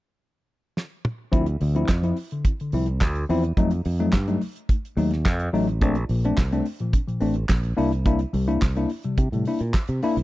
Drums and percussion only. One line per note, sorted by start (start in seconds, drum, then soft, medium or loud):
0.77 snare medium
1.05 mid tom medium
1.33 kick loud
1.33 closed hi-hat medium
1.46 closed hi-hat soft
1.61 open hi-hat medium
1.76 closed hi-hat soft
1.88 kick medium
1.88 snare loud
1.88 clap medium
1.88 closed hi-hat medium
2.03 closed hi-hat soft
2.17 open hi-hat medium
2.31 closed hi-hat soft
2.45 kick loud
2.45 closed hi-hat medium
2.60 closed hi-hat soft
2.72 open hi-hat medium
2.86 closed hi-hat soft
3.01 kick loud
3.01 snare loud
3.01 clap medium
3.01 closed hi-hat medium
3.15 closed hi-hat soft
3.30 open hi-hat medium
3.44 closed hi-hat soft
3.57 kick loud
3.57 closed hi-hat medium
3.71 closed hi-hat medium
3.85 open hi-hat medium
4.00 closed hi-hat soft
4.12 kick medium
4.12 snare loud
4.12 clap medium
4.12 closed hi-hat medium
4.28 closed hi-hat soft
4.41 open hi-hat medium
4.56 closed hi-hat soft
4.69 kick loud
4.69 closed hi-hat medium
4.85 closed hi-hat soft
4.97 open hi-hat medium
5.11 snare soft
5.11 closed hi-hat soft
5.26 kick loud
5.26 snare loud
5.26 clap medium
5.26 closed hi-hat medium
5.39 closed hi-hat soft
5.55 open hi-hat medium
5.69 closed hi-hat soft
5.81 kick loud
5.81 closed hi-hat medium
5.95 closed hi-hat soft
6.09 open hi-hat medium
6.25 closed hi-hat medium
6.37 kick medium
6.37 snare loud
6.37 clap medium
6.37 closed hi-hat medium
6.52 closed hi-hat soft
6.66 open hi-hat medium
6.79 closed hi-hat soft
6.93 kick medium
6.93 closed hi-hat medium
7.08 closed hi-hat soft
7.21 open hi-hat medium
7.34 closed hi-hat soft
7.49 kick loud
7.49 snare loud
7.49 clap medium
7.49 closed hi-hat medium
7.63 closed hi-hat soft
7.78 open hi-hat medium
7.93 closed hi-hat soft
8.05 kick loud
8.05 closed hi-hat medium
8.19 closed hi-hat medium
8.34 open hi-hat medium
8.49 closed hi-hat soft
8.62 kick medium
8.62 snare loud
8.62 clap medium
8.62 closed hi-hat medium
8.76 closed hi-hat soft
8.89 open hi-hat medium
9.03 closed hi-hat soft
9.18 kick loud
9.18 closed hi-hat medium
9.33 closed hi-hat soft
9.45 open hi-hat medium
9.59 closed hi-hat soft
9.74 kick loud
9.74 snare loud
9.74 clap medium
9.74 closed hi-hat medium
9.88 closed hi-hat medium
10.02 open hi-hat medium
10.17 closed hi-hat soft